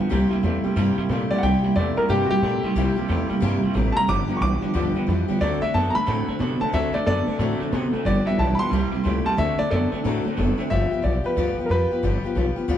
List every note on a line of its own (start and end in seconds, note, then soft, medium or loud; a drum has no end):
0.00 0.10 B3 medium
0.00 0.11 F4 medium
0.00 0.10 G4 medium
0.10 0.28 C2 medium
0.10 0.31 C3 medium
0.10 0.29 C3 medium
0.10 0.32 G3 medium
0.10 0.30 G3 medium
0.10 0.32 A#3 medium
0.10 0.31 E4 medium
0.10 0.30 G4 loud
0.31 0.42 C3 medium
0.31 0.43 G3 medium
0.31 0.43 A#3 medium
0.31 0.44 E4 medium
0.31 0.44 G4 medium
0.31 muted upright bass stroke medium
0.43 0.61 E2 medium
0.43 0.63 C3 medium
0.43 0.64 G3 medium
0.43 0.63 A3 loud
0.43 0.65 A#3 medium
0.43 0.64 E4 medium
0.43 0.62 G4 medium
0.64 0.75 C3 medium
0.64 0.76 G3 medium
0.64 0.76 A#3 soft
0.64 0.77 E4 soft
0.64 0.77 G4 medium
0.64 muted upright bass stroke medium
0.76 0.94 G2 medium
0.76 0.98 C3 medium
0.76 0.96 C3 medium
0.76 0.98 G3 medium
0.76 0.96 G3 loud
0.76 0.98 A#3 loud
0.76 0.98 E4 medium
0.76 0.96 G4 loud
0.97 1.08 C3 medium
0.97 1.09 G3 medium
0.97 1.09 A#3 soft
0.97 1.10 E4 medium
0.97 1.10 G4 medium
0.97 muted upright bass stroke medium
1.09 1.27 A#2 medium
1.09 1.29 C3 medium
1.09 1.31 G3 medium
1.09 1.29 A3 medium
1.09 1.31 A#3 medium
1.09 1.31 E4 medium
1.09 1.29 G4 medium
1.30 1.41 C3 medium
1.30 1.42 G3 medium
1.30 1.43 A#3 soft
1.30 1.43 E4 medium
1.30 1.43 G4 medium
1.30 1.43 D5 loud
1.30 muted upright bass stroke medium
1.39 1.42 F#5 medium
1.43 1.60 C2 medium
1.43 1.62 C3 medium
1.43 1.64 C3 medium
1.43 1.62 G3 medium
1.43 1.64 G3 medium
1.43 1.65 A#3 medium
1.43 1.64 E4 medium
1.43 1.62 G4 medium
1.43 1.75 G5 loud
1.63 1.75 C3 medium
1.63 1.75 G3 medium
1.63 1.75 A#3 soft
1.63 1.76 E4 medium
1.63 1.76 G4 medium
1.63 muted upright bass stroke medium
1.75 1.93 E2 medium
1.75 1.95 C3 medium
1.75 1.97 G3 medium
1.75 1.96 A3 loud
1.75 1.97 A#3 medium
1.75 1.96 E4 medium
1.75 1.95 G4 medium
1.75 1.96 D5 loud
1.96 2.08 C3 medium
1.96 2.09 G3 medium
1.96 2.09 A#3 soft
1.96 2.09 E4 soft
1.96 2.09 G4 medium
1.96 2.09 A#4 loud
1.96 muted upright bass stroke medium
2.09 2.26 G2 medium
2.09 2.30 C3 medium
2.09 2.29 C3 medium
2.09 2.30 G3 medium
2.09 2.29 G3 medium
2.09 2.31 A#3 medium
2.09 2.30 E4 medium
2.09 2.29 G4 loud
2.09 2.28 G4 medium
2.26 2.28 F#4 medium
2.26 2.42 G4 medium
2.30 2.42 C3 medium
2.30 2.42 G3 medium
2.30 2.42 A#3 soft
2.30 2.43 E4 medium
2.30 3.27 G4 loud
2.30 muted upright bass stroke medium
2.42 2.60 A#2 medium
2.42 2.62 C3 medium
2.42 2.63 G3 medium
2.42 2.62 A3 loud
2.42 2.64 A#3 medium
2.42 2.64 E4 medium
2.42 2.62 G4 medium
2.63 2.75 C3 medium
2.63 2.75 G3 medium
2.63 2.75 A#3 soft
2.63 2.76 E4 medium
2.63 2.76 G4 medium
2.63 muted upright bass stroke medium
2.76 2.93 C2 medium
2.76 2.97 C3 medium
2.76 2.95 C3 medium
2.76 2.97 G3 loud
2.76 2.95 G3 loud
2.76 2.97 A#3 loud
2.76 2.97 E4 loud
2.76 2.95 G4 loud
2.96 3.08 C3 medium
2.96 3.08 G3 medium
2.96 3.08 A#3 medium
2.96 3.09 E4 medium
2.96 3.09 G4 medium
2.96 muted upright bass stroke medium
3.08 3.26 E2 medium
3.08 3.28 C3 medium
3.08 3.29 G3 medium
3.08 3.28 A3 loud
3.08 3.30 A#3 medium
3.08 3.29 E4 medium
3.08 3.27 G4 medium
3.29 3.41 C3 medium
3.29 3.41 G3 medium
3.29 3.41 A#3 medium
3.29 3.41 E4 medium
3.29 3.41 G4 medium
3.29 muted upright bass stroke medium
3.40 3.59 G2 medium
3.40 3.62 C3 loud
3.40 3.61 C3 medium
3.40 3.63 G3 loud
3.40 3.61 G3 loud
3.40 3.63 A#3 loud
3.40 3.62 E4 loud
3.40 3.60 G4 loud
3.61 3.74 C3 medium
3.61 3.74 G3 medium
3.61 3.74 A#3 soft
3.61 3.74 E4 medium
3.61 3.74 G4 medium
3.61 muted upright bass stroke medium
3.74 3.92 A1 loud
3.74 3.94 C3 medium
3.74 3.95 G3 medium
3.74 3.94 A3 medium
3.74 3.96 A#3 medium
3.74 3.95 E4 medium
3.74 3.94 G4 medium
3.92 4.07 C3 medium
3.92 4.08 G4 medium
3.92 3.94 A5 medium
3.92 muted upright bass stroke medium
3.96 4.07 G3 medium
3.96 4.08 A#3 soft
3.96 4.09 E4 medium
3.96 4.08 A#5 loud
4.07 4.25 G1 medium
4.07 4.29 G2 medium
4.07 4.27 G2 medium
4.07 4.29 D3 medium
4.07 4.27 D3 medium
4.07 4.29 F3 medium
4.07 4.29 B3 medium
4.07 4.28 D4 medium
4.07 4.26 G4 medium
4.07 4.40 D6 loud
4.28 4.40 G2 medium
4.28 4.40 D3 medium
4.28 4.39 F3 soft
4.28 4.41 B3 medium
4.28 4.41 D4 medium
4.28 4.41 G4 medium
4.28 muted upright bass stroke medium
4.37 4.58 B1 medium
4.37 4.60 G2 medium
4.37 4.62 F3 medium
4.37 4.40 C#6 medium
4.41 4.60 E3 medium
4.41 4.62 B3 medium
4.41 4.61 D4 medium
4.41 4.60 G4 medium
4.41 5.06 D6 loud
4.61 4.73 G2 medium
4.61 4.73 D3 medium
4.61 4.73 F3 soft
4.61 4.73 B3 soft
4.61 4.74 D4 medium
4.61 4.74 G4 medium
4.61 muted upright bass stroke medium
4.74 4.92 D2 medium
4.74 4.95 G2 medium
4.74 4.93 G2 medium
4.74 4.95 D3 medium
4.74 4.94 D3 medium
4.74 4.95 F3 medium
4.74 4.95 B3 medium
4.74 4.94 D4 medium
4.74 4.93 G4 medium
4.95 5.07 G2 medium
4.95 5.07 D3 medium
4.95 5.05 F3 medium
4.95 5.07 B3 soft
4.95 5.08 D4 medium
4.95 5.07 G4 medium
4.95 muted upright bass stroke medium
5.07 5.25 F2 medium
5.07 5.27 G2 medium
5.07 5.27 E3 medium
5.07 5.28 F3 medium
5.07 5.29 B3 medium
5.07 5.28 D4 medium
5.07 5.27 G4 medium
5.28 5.40 G2 medium
5.28 5.40 D3 medium
5.28 5.41 F3 medium
5.28 5.41 B3 medium
5.28 5.41 D4 medium
5.28 5.41 G4 medium
5.28 muted upright bass stroke medium
5.40 5.58 D2 medium
5.40 5.61 D3 medium
5.40 5.60 D3 medium
5.40 5.62 F#3 medium
5.40 5.60 A3 medium
5.40 5.62 C4 medium
5.40 5.61 D4 medium
5.40 5.60 A4 medium
5.40 5.61 D5 loud
5.61 5.73 D3 medium
5.61 5.73 A3 medium
5.61 5.74 C4 soft
5.61 5.74 D4 medium
5.61 5.74 A4 medium
5.61 5.74 E5 loud
5.61 muted upright bass stroke medium
5.73 5.91 F#2 medium
5.73 5.93 D3 medium
5.73 5.95 F#3 medium
5.73 5.93 B3 medium
5.73 5.95 C4 medium
5.73 5.95 D4 medium
5.73 5.93 A4 medium
5.73 5.94 A5 loud
5.90 6.07 A4 medium
5.90 5.92 A#5 medium
5.95 6.06 D3 medium
5.95 6.06 A3 medium
5.95 6.06 C4 soft
5.95 6.06 D4 medium
5.95 6.59 B5 loud
5.95 muted upright bass stroke medium
6.06 6.24 A2 loud
6.06 6.27 D3 medium
6.06 6.26 D3 medium
6.06 6.28 F#3 medium
6.06 6.26 A3 loud
6.06 6.28 C4 medium
6.06 6.28 D4 medium
6.06 6.26 A4 medium
6.28 6.39 D3 medium
6.28 6.39 A3 medium
6.28 6.39 C4 soft
6.28 6.40 D4 soft
6.28 6.40 A4 medium
6.28 muted upright bass stroke medium
6.39 6.57 C3 medium
6.39 6.59 D3 medium
6.39 6.60 F#3 medium
6.39 6.59 B3 medium
6.39 6.61 C4 medium
6.39 6.60 D4 medium
6.39 6.59 A4 medium
6.60 6.72 D3 medium
6.60 6.72 A3 medium
6.60 6.73 C4 medium
6.60 6.73 D4 soft
6.60 6.73 A4 medium
6.60 6.73 A5 loud
6.60 muted upright bass stroke medium
6.73 6.90 D2 medium
6.73 6.94 D3 medium
6.73 6.92 D3 medium
6.73 6.94 F#3 medium
6.73 6.92 A3 medium
6.73 6.94 C4 medium
6.73 6.93 D4 medium
6.73 6.91 A4 medium
6.73 6.94 E5 loud
6.92 7.05 D3 medium
6.92 7.06 A3 medium
6.92 7.05 C4 soft
6.92 7.06 D4 medium
6.92 7.05 A4 medium
6.92 7.06 D5 medium
6.92 muted upright bass stroke medium
7.05 7.24 F#2 medium
7.05 7.25 D3 medium
7.05 7.27 F#3 medium
7.05 7.25 B3 medium
7.05 7.27 C4 medium
7.05 7.27 D4 medium
7.05 7.69 A4 loud
7.05 7.25 A4 medium
7.05 7.71 D5 loud
7.26 7.38 D3 medium
7.26 7.38 A3 medium
7.26 7.40 C4 soft
7.26 7.40 D4 medium
7.26 7.39 A4 medium
7.26 muted upright bass stroke medium
7.39 7.56 A2 medium
7.39 7.58 D3 medium
7.39 7.60 D3 medium
7.39 7.61 F#3 medium
7.39 7.58 A3 loud
7.39 7.61 C4 medium
7.39 7.61 D4 medium
7.39 7.59 A4 loud
7.60 7.71 D3 medium
7.60 7.71 A3 medium
7.60 7.72 C4 medium
7.60 7.73 D4 medium
7.60 7.73 A4 medium
7.60 muted upright bass stroke medium
7.72 7.90 C3 medium
7.72 7.91 D3 medium
7.72 7.93 F#3 medium
7.72 7.91 B3 medium
7.72 7.94 C4 medium
7.72 7.93 D4 medium
7.72 7.92 A4 medium
7.93 8.04 D3 medium
7.93 8.04 A3 medium
7.93 8.06 C4 medium
7.93 8.06 D4 medium
7.93 8.06 A4 medium
7.93 muted upright bass stroke medium
8.05 8.22 G1 loud
8.05 8.24 G2 medium
8.05 8.26 G2 medium
8.05 8.24 D3 medium
8.05 8.27 D3 medium
8.05 8.27 F3 medium
8.05 8.27 B3 medium
8.05 8.27 D4 medium
8.05 8.26 G4 loud
8.05 8.26 D5 loud
8.26 8.37 G2 medium
8.26 8.37 D3 medium
8.26 8.38 B3 medium
8.26 8.40 D4 medium
8.26 8.39 G4 medium
8.26 8.39 E5 medium
8.26 muted upright bass stroke medium
8.30 8.38 F3 medium
8.38 8.56 B1 medium
8.38 8.57 G2 medium
8.38 8.57 E3 loud
8.38 8.60 F3 medium
8.38 8.60 B3 medium
8.38 8.59 D4 medium
8.38 8.58 G4 medium
8.38 8.59 A5 medium
8.55 8.70 G2 medium
8.55 8.70 D3 medium
8.55 8.57 B5 medium
8.59 8.73 F3 soft
8.59 8.73 B3 soft
8.59 8.72 D4 medium
8.59 8.72 G4 medium
8.59 9.24 C6 loud
8.59 muted upright bass stroke medium
8.70 8.89 C2 medium
8.70 8.90 C3 medium
8.70 8.93 C3 medium
8.70 8.90 G3 loud
8.70 8.93 G3 medium
8.70 8.94 A#3 medium
8.70 8.93 E4 medium
8.70 8.91 G4 medium
8.92 9.03 C3 medium
8.92 9.04 G3 medium
8.92 9.04 A#3 soft
8.92 9.05 E4 soft
8.92 9.05 G4 medium
8.92 muted upright bass stroke medium
9.04 9.22 C#2 medium
9.04 9.23 C3 medium
9.04 9.25 G3 medium
9.04 9.24 A3 loud
9.04 9.26 A#3 medium
9.04 9.26 E4 medium
9.04 9.24 G4 medium
9.25 9.36 C3 medium
9.25 9.37 G3 medium
9.25 9.38 A#3 soft
9.25 9.38 E4 soft
9.25 9.38 G4 medium
9.25 9.38 A5 loud
9.25 muted upright bass stroke medium
9.37 9.55 D2 loud
9.37 9.59 D3 medium
9.37 9.57 D3 medium
9.37 9.59 F#3 medium
9.37 9.57 A3 medium
9.37 9.59 C4 medium
9.37 9.59 D4 medium
9.37 9.57 A4 medium
9.37 9.59 E5 loud
9.59 9.70 D3 medium
9.59 9.70 A3 medium
9.59 9.71 C4 soft
9.59 9.72 D4 medium
9.59 9.71 A4 medium
9.59 9.70 D5 loud
9.59 muted upright bass stroke medium
9.71 9.89 F#2 medium
9.71 9.90 D3 medium
9.71 9.92 F#3 medium
9.71 9.90 B3 loud
9.71 9.93 C4 medium
9.71 9.93 D4 medium
9.71 10.33 A4 medium
9.71 9.91 A4 medium
9.71 10.36 D5 loud
9.92 10.03 D3 medium
9.92 10.03 A3 medium
9.92 10.04 C4 soft
9.92 10.05 D4 soft
9.92 10.05 A4 medium
9.92 muted upright bass stroke medium
10.04 10.22 A2 medium
10.04 10.23 D3 medium
10.04 10.25 D3 medium
10.04 10.26 F#3 medium
10.04 10.23 A3 loud
10.04 10.26 C4 medium
10.04 10.25 D4 medium
10.04 10.23 A4 medium
10.24 10.36 D3 medium
10.24 10.36 A3 medium
10.24 10.37 C4 medium
10.24 10.38 D4 medium
10.24 10.37 A4 medium
10.24 muted upright bass stroke medium
10.37 10.55 F#1 medium
10.37 10.56 D3 medium
10.37 10.58 F#3 medium
10.37 10.56 B3 medium
10.37 10.59 C4 medium
10.37 10.58 D4 medium
10.37 10.56 A4 medium
10.57 10.70 D3 medium
10.57 10.70 A3 medium
10.57 10.71 C4 medium
10.57 10.71 D4 medium
10.57 10.70 A4 medium
10.57 muted upright bass stroke medium
10.70 10.88 G1 medium
10.70 10.91 G2 medium
10.70 10.91 D3 medium
10.70 10.92 F3 medium
10.70 10.92 B3 medium
10.70 10.91 F4 medium
10.70 10.90 G4 medium
10.70 11.03 E5 loud
10.91 11.01 F3 soft
10.91 11.02 B3 soft
10.91 11.03 F4 medium
10.91 11.04 G4 medium
10.91 muted upright bass stroke medium
11.02 11.21 B1 medium
11.02 11.24 F3 medium
11.02 11.25 B3 medium
11.02 11.24 F4 medium
11.02 11.23 G4 medium
11.02 11.24 D5 medium
11.24 11.36 F3 soft
11.24 11.37 B3 soft
11.24 11.37 F4 soft
11.24 11.37 G4 medium
11.24 11.69 B4 medium
11.24 muted upright bass stroke medium
11.36 11.54 D2 medium
11.36 11.58 G2 medium
11.36 11.58 D3 medium
11.36 11.58 F3 medium
11.36 11.59 B3 medium
11.36 11.58 F4 medium
11.36 11.57 G4 medium
11.58 11.68 F3 soft
11.58 11.69 B3 medium
11.58 11.70 F4 medium
11.58 11.70 G4 medium
11.58 muted upright bass stroke medium
11.66 11.91 F3 medium
11.66 11.69 A#4 medium
11.70 11.87 F2 medium
11.70 11.91 B3 medium
11.70 11.91 F4 medium
11.70 11.90 G4 medium
11.70 12.67 B4 loud
11.91 12.03 F3 soft
11.91 12.03 B3 soft
11.91 12.04 F4 medium
11.91 12.03 G4 medium
11.91 muted upright bass stroke medium
12.03 12.20 G1 medium
12.03 12.24 G2 medium
12.03 12.24 D3 medium
12.03 12.25 F3 medium
12.03 12.25 B3 medium
12.03 12.24 F4 medium
12.03 12.22 G4 medium
12.24 12.34 F3 medium
12.24 12.35 B3 medium
12.24 12.36 F4 medium
12.24 12.36 G4 medium
12.24 muted upright bass stroke medium
12.35 12.53 B1 medium
12.35 12.57 F3 medium
12.35 12.57 B3 medium
12.35 12.56 F4 medium
12.35 12.55 G4 medium
12.56 12.68 F3 medium
12.56 12.68 B3 medium
12.56 12.68 F4 medium
12.56 12.69 G4 medium
12.56 muted upright bass stroke medium
12.68 12.78 D2 medium
12.68 12.78 G2 medium
12.68 12.78 D3 medium
12.68 12.78 F3 loud
12.68 12.78 B3 loud
12.68 12.78 F4 loud
12.68 12.78 G4 loud